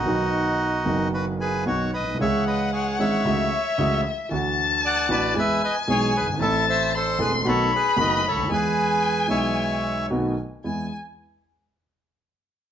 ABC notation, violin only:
X:1
M:4/4
L:1/8
Q:1/4=114
K:E
V:1 name="Violin"
z8 | f4 e4 | a4 g4 | a2 =c'2 b4 |
g6- g z | g z6 z |]